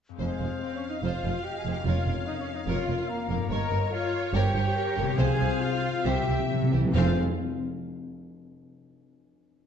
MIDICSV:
0, 0, Header, 1, 11, 480
1, 0, Start_track
1, 0, Key_signature, -4, "minor"
1, 0, Tempo, 415512
1, 233, Time_signature, 4, 2, 24, 8
1, 5992, Tempo, 441176
1, 10866, End_track
2, 0, Start_track
2, 0, Title_t, "Trumpet section"
2, 0, Program_c, 0, 61
2, 234, Note_on_c, 0, 68, 38
2, 680, Note_off_c, 0, 68, 0
2, 708, Note_on_c, 0, 72, 48
2, 781, Note_off_c, 0, 72, 0
2, 860, Note_on_c, 0, 73, 48
2, 935, Note_off_c, 0, 73, 0
2, 1022, Note_on_c, 0, 75, 45
2, 1183, Note_off_c, 0, 75, 0
2, 1188, Note_on_c, 0, 77, 48
2, 1659, Note_off_c, 0, 77, 0
2, 1663, Note_on_c, 0, 79, 50
2, 1826, Note_off_c, 0, 79, 0
2, 1827, Note_on_c, 0, 80, 49
2, 1984, Note_on_c, 0, 79, 45
2, 1985, Note_off_c, 0, 80, 0
2, 2146, Note_off_c, 0, 79, 0
2, 2148, Note_on_c, 0, 77, 46
2, 2614, Note_on_c, 0, 75, 56
2, 2615, Note_off_c, 0, 77, 0
2, 2688, Note_off_c, 0, 75, 0
2, 2773, Note_on_c, 0, 73, 52
2, 2847, Note_off_c, 0, 73, 0
2, 2937, Note_on_c, 0, 75, 50
2, 3010, Note_off_c, 0, 75, 0
2, 3093, Note_on_c, 0, 77, 60
2, 3563, Note_off_c, 0, 77, 0
2, 3566, Note_on_c, 0, 70, 53
2, 4047, Note_off_c, 0, 70, 0
2, 4048, Note_on_c, 0, 82, 60
2, 4529, Note_off_c, 0, 82, 0
2, 4532, Note_on_c, 0, 77, 72
2, 5005, Note_off_c, 0, 77, 0
2, 5017, Note_on_c, 0, 79, 73
2, 5992, Note_off_c, 0, 79, 0
2, 5993, Note_on_c, 0, 80, 79
2, 6453, Note_off_c, 0, 80, 0
2, 6460, Note_on_c, 0, 77, 82
2, 6929, Note_off_c, 0, 77, 0
2, 6938, Note_on_c, 0, 79, 68
2, 7414, Note_off_c, 0, 79, 0
2, 7906, Note_on_c, 0, 77, 62
2, 8108, Note_off_c, 0, 77, 0
2, 10866, End_track
3, 0, Start_track
3, 0, Title_t, "Violin section"
3, 0, Program_c, 1, 48
3, 239, Note_on_c, 1, 77, 41
3, 4009, Note_off_c, 1, 77, 0
3, 4047, Note_on_c, 1, 73, 58
3, 5950, Note_off_c, 1, 73, 0
3, 5991, Note_on_c, 1, 77, 62
3, 6921, Note_off_c, 1, 77, 0
3, 6954, Note_on_c, 1, 76, 52
3, 7684, Note_off_c, 1, 76, 0
3, 7916, Note_on_c, 1, 77, 74
3, 8181, Note_off_c, 1, 77, 0
3, 10866, End_track
4, 0, Start_track
4, 0, Title_t, "Flute"
4, 0, Program_c, 2, 73
4, 225, Note_on_c, 2, 72, 51
4, 1141, Note_off_c, 2, 72, 0
4, 1176, Note_on_c, 2, 72, 41
4, 1645, Note_off_c, 2, 72, 0
4, 1651, Note_on_c, 2, 75, 49
4, 2146, Note_on_c, 2, 73, 47
4, 2163, Note_off_c, 2, 75, 0
4, 3563, Note_on_c, 2, 77, 59
4, 3581, Note_off_c, 2, 73, 0
4, 4042, Note_off_c, 2, 77, 0
4, 4049, Note_on_c, 2, 75, 67
4, 4530, Note_on_c, 2, 73, 65
4, 4548, Note_off_c, 2, 75, 0
4, 5011, Note_on_c, 2, 72, 64
4, 5028, Note_off_c, 2, 73, 0
4, 5493, Note_on_c, 2, 70, 66
4, 5510, Note_off_c, 2, 72, 0
4, 5988, Note_off_c, 2, 70, 0
4, 5993, Note_on_c, 2, 72, 78
4, 6937, Note_on_c, 2, 76, 60
4, 6953, Note_off_c, 2, 72, 0
4, 7666, Note_off_c, 2, 76, 0
4, 7907, Note_on_c, 2, 72, 75
4, 8176, Note_off_c, 2, 72, 0
4, 10866, End_track
5, 0, Start_track
5, 0, Title_t, "Violin section"
5, 0, Program_c, 3, 48
5, 230, Note_on_c, 3, 72, 46
5, 234, Note_off_c, 3, 72, 0
5, 234, Note_on_c, 3, 72, 43
5, 457, Note_off_c, 3, 72, 0
5, 481, Note_on_c, 3, 72, 32
5, 484, Note_on_c, 3, 68, 33
5, 573, Note_off_c, 3, 72, 0
5, 576, Note_off_c, 3, 68, 0
5, 1202, Note_on_c, 3, 72, 44
5, 1207, Note_off_c, 3, 72, 0
5, 1207, Note_on_c, 3, 72, 47
5, 1423, Note_off_c, 3, 72, 0
5, 1443, Note_on_c, 3, 68, 36
5, 1445, Note_on_c, 3, 72, 34
5, 1535, Note_off_c, 3, 68, 0
5, 1538, Note_off_c, 3, 72, 0
5, 1923, Note_on_c, 3, 72, 43
5, 1924, Note_on_c, 3, 68, 37
5, 2015, Note_off_c, 3, 72, 0
5, 2017, Note_off_c, 3, 68, 0
5, 2158, Note_on_c, 3, 70, 42
5, 2161, Note_on_c, 3, 73, 46
5, 2376, Note_off_c, 3, 70, 0
5, 2377, Note_off_c, 3, 73, 0
5, 2398, Note_on_c, 3, 70, 33
5, 2406, Note_off_c, 3, 70, 0
5, 2406, Note_on_c, 3, 70, 35
5, 2497, Note_off_c, 3, 70, 0
5, 3091, Note_on_c, 3, 70, 49
5, 3095, Note_on_c, 3, 73, 48
5, 3317, Note_off_c, 3, 70, 0
5, 3319, Note_off_c, 3, 73, 0
5, 3346, Note_on_c, 3, 70, 38
5, 3347, Note_off_c, 3, 70, 0
5, 3347, Note_on_c, 3, 70, 37
5, 3439, Note_off_c, 3, 70, 0
5, 3809, Note_on_c, 3, 70, 49
5, 3812, Note_off_c, 3, 70, 0
5, 3812, Note_on_c, 3, 70, 51
5, 3905, Note_off_c, 3, 70, 0
5, 4044, Note_on_c, 3, 70, 55
5, 4046, Note_on_c, 3, 73, 58
5, 4270, Note_off_c, 3, 70, 0
5, 4271, Note_off_c, 3, 73, 0
5, 4289, Note_on_c, 3, 70, 46
5, 4290, Note_off_c, 3, 70, 0
5, 4290, Note_on_c, 3, 70, 46
5, 4382, Note_off_c, 3, 70, 0
5, 5019, Note_on_c, 3, 70, 73
5, 5023, Note_on_c, 3, 73, 75
5, 5242, Note_off_c, 3, 70, 0
5, 5244, Note_off_c, 3, 73, 0
5, 5267, Note_on_c, 3, 70, 61
5, 5272, Note_off_c, 3, 70, 0
5, 5272, Note_on_c, 3, 70, 55
5, 5365, Note_off_c, 3, 70, 0
5, 5751, Note_on_c, 3, 70, 63
5, 5753, Note_off_c, 3, 70, 0
5, 5753, Note_on_c, 3, 70, 61
5, 5845, Note_off_c, 3, 70, 0
5, 5989, Note_on_c, 3, 72, 78
5, 5992, Note_off_c, 3, 72, 0
5, 5992, Note_on_c, 3, 72, 77
5, 6210, Note_off_c, 3, 72, 0
5, 6236, Note_on_c, 3, 68, 48
5, 6243, Note_on_c, 3, 72, 49
5, 6323, Note_off_c, 3, 68, 0
5, 6330, Note_off_c, 3, 72, 0
5, 6946, Note_on_c, 3, 72, 74
5, 6949, Note_off_c, 3, 72, 0
5, 6949, Note_on_c, 3, 72, 68
5, 7170, Note_off_c, 3, 72, 0
5, 7201, Note_on_c, 3, 67, 46
5, 7201, Note_on_c, 3, 72, 49
5, 7288, Note_off_c, 3, 67, 0
5, 7288, Note_off_c, 3, 72, 0
5, 7670, Note_on_c, 3, 67, 53
5, 7676, Note_on_c, 3, 72, 57
5, 7757, Note_off_c, 3, 67, 0
5, 7764, Note_off_c, 3, 72, 0
5, 7916, Note_on_c, 3, 72, 62
5, 7918, Note_on_c, 3, 68, 68
5, 8181, Note_off_c, 3, 72, 0
5, 8182, Note_off_c, 3, 68, 0
5, 10866, End_track
6, 0, Start_track
6, 0, Title_t, "French horn section"
6, 0, Program_c, 4, 60
6, 236, Note_on_c, 4, 56, 54
6, 681, Note_off_c, 4, 56, 0
6, 728, Note_on_c, 4, 60, 50
6, 796, Note_off_c, 4, 60, 0
6, 877, Note_on_c, 4, 61, 44
6, 948, Note_off_c, 4, 61, 0
6, 1050, Note_on_c, 4, 63, 48
6, 1190, Note_on_c, 4, 65, 59
6, 1198, Note_off_c, 4, 63, 0
6, 1660, Note_off_c, 4, 65, 0
6, 1663, Note_on_c, 4, 67, 60
6, 1823, Note_off_c, 4, 67, 0
6, 1842, Note_on_c, 4, 68, 59
6, 1994, Note_on_c, 4, 67, 62
6, 1995, Note_off_c, 4, 68, 0
6, 2148, Note_off_c, 4, 67, 0
6, 2151, Note_on_c, 4, 65, 62
6, 2617, Note_off_c, 4, 65, 0
6, 2628, Note_on_c, 4, 63, 60
6, 2698, Note_off_c, 4, 63, 0
6, 2782, Note_on_c, 4, 61, 56
6, 2853, Note_off_c, 4, 61, 0
6, 2946, Note_on_c, 4, 63, 53
6, 3099, Note_off_c, 4, 63, 0
6, 3099, Note_on_c, 4, 65, 69
6, 3566, Note_off_c, 4, 65, 0
6, 3591, Note_on_c, 4, 58, 69
6, 4050, Note_off_c, 4, 58, 0
6, 4056, Note_on_c, 4, 70, 85
6, 4524, Note_off_c, 4, 70, 0
6, 4529, Note_on_c, 4, 65, 79
6, 5013, Note_off_c, 4, 65, 0
6, 5018, Note_on_c, 4, 67, 82
6, 5993, Note_off_c, 4, 67, 0
6, 6009, Note_on_c, 4, 68, 98
6, 6461, Note_off_c, 4, 68, 0
6, 6487, Note_on_c, 4, 65, 89
6, 6943, Note_off_c, 4, 65, 0
6, 6960, Note_on_c, 4, 67, 82
6, 7434, Note_off_c, 4, 67, 0
6, 7932, Note_on_c, 4, 65, 89
6, 8125, Note_off_c, 4, 65, 0
6, 10866, End_track
7, 0, Start_track
7, 0, Title_t, "Viola section"
7, 0, Program_c, 5, 48
7, 229, Note_on_c, 5, 56, 41
7, 678, Note_off_c, 5, 56, 0
7, 718, Note_on_c, 5, 60, 46
7, 870, Note_on_c, 5, 61, 44
7, 875, Note_off_c, 5, 60, 0
7, 1031, Note_off_c, 5, 61, 0
7, 1036, Note_on_c, 5, 63, 44
7, 1099, Note_off_c, 5, 63, 0
7, 1188, Note_on_c, 5, 65, 48
7, 1659, Note_off_c, 5, 65, 0
7, 1662, Note_on_c, 5, 67, 51
7, 1817, Note_on_c, 5, 68, 44
7, 1825, Note_off_c, 5, 67, 0
7, 1978, Note_on_c, 5, 67, 52
7, 1979, Note_off_c, 5, 68, 0
7, 2044, Note_off_c, 5, 67, 0
7, 2133, Note_on_c, 5, 65, 47
7, 2607, Note_off_c, 5, 65, 0
7, 2618, Note_on_c, 5, 63, 53
7, 2774, Note_on_c, 5, 61, 47
7, 2776, Note_off_c, 5, 63, 0
7, 2931, Note_on_c, 5, 63, 51
7, 2934, Note_off_c, 5, 61, 0
7, 2997, Note_off_c, 5, 63, 0
7, 3097, Note_on_c, 5, 65, 61
7, 3565, Note_off_c, 5, 65, 0
7, 3571, Note_on_c, 5, 58, 54
7, 4048, Note_on_c, 5, 70, 66
7, 4050, Note_off_c, 5, 58, 0
7, 4520, Note_off_c, 5, 70, 0
7, 4538, Note_on_c, 5, 65, 70
7, 5008, Note_off_c, 5, 65, 0
7, 5019, Note_on_c, 5, 67, 71
7, 5974, Note_off_c, 5, 67, 0
7, 5988, Note_on_c, 5, 68, 80
7, 6460, Note_off_c, 5, 68, 0
7, 6461, Note_on_c, 5, 65, 77
7, 6939, Note_off_c, 5, 65, 0
7, 6944, Note_on_c, 5, 67, 67
7, 7426, Note_off_c, 5, 67, 0
7, 7908, Note_on_c, 5, 60, 72
7, 8176, Note_off_c, 5, 60, 0
7, 10866, End_track
8, 0, Start_track
8, 0, Title_t, "Harp"
8, 0, Program_c, 6, 46
8, 104, Note_on_c, 6, 41, 37
8, 129, Note_on_c, 6, 60, 29
8, 155, Note_on_c, 6, 68, 30
8, 181, Note_on_c, 6, 72, 28
8, 1924, Note_off_c, 6, 41, 0
8, 1938, Note_on_c, 6, 41, 40
8, 1992, Note_on_c, 6, 58, 32
8, 2042, Note_on_c, 6, 70, 36
8, 2094, Note_on_c, 6, 61, 35
8, 2116, Note_off_c, 6, 68, 0
8, 2142, Note_off_c, 6, 60, 0
8, 2142, Note_off_c, 6, 72, 0
8, 3833, Note_on_c, 6, 43, 53
8, 3874, Note_off_c, 6, 58, 0
8, 3888, Note_on_c, 6, 58, 46
8, 3938, Note_on_c, 6, 67, 42
8, 3966, Note_off_c, 6, 41, 0
8, 5787, Note_on_c, 6, 48, 67
8, 5836, Note_on_c, 6, 60, 56
8, 5889, Note_on_c, 6, 65, 51
8, 5902, Note_off_c, 6, 43, 0
8, 5929, Note_off_c, 6, 58, 0
8, 5941, Note_on_c, 6, 72, 52
8, 5954, Note_off_c, 6, 67, 0
8, 5958, Note_off_c, 6, 70, 0
8, 5984, Note_off_c, 6, 61, 0
8, 6736, Note_off_c, 6, 48, 0
8, 6749, Note_on_c, 6, 48, 46
8, 6782, Note_off_c, 6, 60, 0
8, 6795, Note_on_c, 6, 60, 39
8, 6847, Note_on_c, 6, 64, 40
8, 6881, Note_off_c, 6, 72, 0
8, 6894, Note_on_c, 6, 72, 39
8, 6911, Note_off_c, 6, 65, 0
8, 7833, Note_off_c, 6, 48, 0
8, 7867, Note_on_c, 6, 53, 66
8, 7882, Note_off_c, 6, 60, 0
8, 7882, Note_off_c, 6, 64, 0
8, 7886, Note_on_c, 6, 60, 65
8, 7906, Note_off_c, 6, 72, 0
8, 7908, Note_on_c, 6, 65, 70
8, 7927, Note_on_c, 6, 68, 69
8, 7950, Note_on_c, 6, 72, 73
8, 7968, Note_on_c, 6, 80, 68
8, 8181, Note_off_c, 6, 60, 0
8, 8181, Note_off_c, 6, 68, 0
8, 8181, Note_off_c, 6, 80, 0
8, 8182, Note_off_c, 6, 53, 0
8, 8182, Note_off_c, 6, 65, 0
8, 8182, Note_off_c, 6, 72, 0
8, 10866, End_track
9, 0, Start_track
9, 0, Title_t, "Timpani"
9, 0, Program_c, 7, 47
9, 2145, Note_on_c, 7, 41, 56
9, 2814, Note_off_c, 7, 41, 0
9, 5985, Note_on_c, 7, 48, 73
9, 6653, Note_off_c, 7, 48, 0
9, 7025, Note_on_c, 7, 48, 28
9, 7098, Note_off_c, 7, 48, 0
9, 7111, Note_on_c, 7, 48, 37
9, 7194, Note_off_c, 7, 48, 0
9, 7292, Note_on_c, 7, 48, 47
9, 7366, Note_off_c, 7, 48, 0
9, 7379, Note_on_c, 7, 48, 47
9, 7450, Note_off_c, 7, 48, 0
9, 7463, Note_on_c, 7, 48, 52
9, 7540, Note_off_c, 7, 48, 0
9, 7553, Note_on_c, 7, 48, 71
9, 7623, Note_off_c, 7, 48, 0
9, 7636, Note_on_c, 7, 48, 73
9, 7708, Note_off_c, 7, 48, 0
9, 7721, Note_on_c, 7, 48, 73
9, 7787, Note_off_c, 7, 48, 0
9, 7800, Note_on_c, 7, 48, 92
9, 7887, Note_off_c, 7, 48, 0
9, 7901, Note_on_c, 7, 41, 92
9, 8128, Note_off_c, 7, 41, 0
9, 10866, End_track
10, 0, Start_track
10, 0, Title_t, "Cello section"
10, 0, Program_c, 8, 48
10, 227, Note_on_c, 8, 41, 48
10, 319, Note_off_c, 8, 41, 0
10, 475, Note_on_c, 8, 41, 32
10, 567, Note_off_c, 8, 41, 0
10, 1184, Note_on_c, 8, 41, 49
10, 1277, Note_off_c, 8, 41, 0
10, 1430, Note_on_c, 8, 41, 31
10, 1523, Note_off_c, 8, 41, 0
10, 1902, Note_on_c, 8, 41, 33
10, 1994, Note_off_c, 8, 41, 0
10, 2139, Note_on_c, 8, 41, 53
10, 2232, Note_off_c, 8, 41, 0
10, 2376, Note_on_c, 8, 41, 37
10, 2469, Note_off_c, 8, 41, 0
10, 3090, Note_on_c, 8, 41, 55
10, 3182, Note_off_c, 8, 41, 0
10, 3328, Note_on_c, 8, 41, 33
10, 3421, Note_off_c, 8, 41, 0
10, 3806, Note_on_c, 8, 41, 42
10, 3899, Note_off_c, 8, 41, 0
10, 4039, Note_on_c, 8, 43, 63
10, 4131, Note_off_c, 8, 43, 0
10, 4279, Note_on_c, 8, 43, 50
10, 4371, Note_off_c, 8, 43, 0
10, 4999, Note_on_c, 8, 43, 78
10, 5091, Note_off_c, 8, 43, 0
10, 5244, Note_on_c, 8, 43, 49
10, 5336, Note_off_c, 8, 43, 0
10, 5737, Note_on_c, 8, 43, 55
10, 5830, Note_off_c, 8, 43, 0
10, 5986, Note_on_c, 8, 48, 79
10, 6074, Note_off_c, 8, 48, 0
10, 6216, Note_on_c, 8, 48, 55
10, 6303, Note_off_c, 8, 48, 0
10, 6932, Note_on_c, 8, 48, 69
10, 7020, Note_off_c, 8, 48, 0
10, 7176, Note_on_c, 8, 48, 46
10, 7263, Note_off_c, 8, 48, 0
10, 7419, Note_on_c, 8, 48, 61
10, 7648, Note_off_c, 8, 48, 0
10, 7658, Note_on_c, 8, 52, 66
10, 7905, Note_off_c, 8, 52, 0
10, 7908, Note_on_c, 8, 41, 84
10, 8176, Note_off_c, 8, 41, 0
10, 10866, End_track
11, 0, Start_track
11, 0, Title_t, "Double bass section"
11, 0, Program_c, 10, 48
11, 228, Note_on_c, 10, 29, 41
11, 320, Note_off_c, 10, 29, 0
11, 462, Note_on_c, 10, 29, 33
11, 555, Note_off_c, 10, 29, 0
11, 1188, Note_on_c, 10, 29, 48
11, 1280, Note_off_c, 10, 29, 0
11, 1420, Note_on_c, 10, 29, 35
11, 1512, Note_off_c, 10, 29, 0
11, 1905, Note_on_c, 10, 29, 31
11, 1997, Note_off_c, 10, 29, 0
11, 2143, Note_on_c, 10, 29, 47
11, 2236, Note_off_c, 10, 29, 0
11, 2388, Note_on_c, 10, 29, 37
11, 2481, Note_off_c, 10, 29, 0
11, 3088, Note_on_c, 10, 29, 58
11, 3181, Note_off_c, 10, 29, 0
11, 3327, Note_on_c, 10, 29, 42
11, 3420, Note_off_c, 10, 29, 0
11, 3804, Note_on_c, 10, 29, 46
11, 3897, Note_off_c, 10, 29, 0
11, 4042, Note_on_c, 10, 31, 60
11, 4134, Note_off_c, 10, 31, 0
11, 4294, Note_on_c, 10, 31, 47
11, 4386, Note_off_c, 10, 31, 0
11, 5006, Note_on_c, 10, 31, 75
11, 5098, Note_off_c, 10, 31, 0
11, 5247, Note_on_c, 10, 31, 59
11, 5339, Note_off_c, 10, 31, 0
11, 5742, Note_on_c, 10, 31, 55
11, 5834, Note_off_c, 10, 31, 0
11, 5992, Note_on_c, 10, 36, 72
11, 6080, Note_off_c, 10, 36, 0
11, 6227, Note_on_c, 10, 36, 58
11, 6314, Note_off_c, 10, 36, 0
11, 6940, Note_on_c, 10, 36, 67
11, 7027, Note_off_c, 10, 36, 0
11, 7189, Note_on_c, 10, 36, 50
11, 7276, Note_off_c, 10, 36, 0
11, 7666, Note_on_c, 10, 36, 46
11, 7753, Note_off_c, 10, 36, 0
11, 7916, Note_on_c, 10, 29, 74
11, 8180, Note_off_c, 10, 29, 0
11, 10866, End_track
0, 0, End_of_file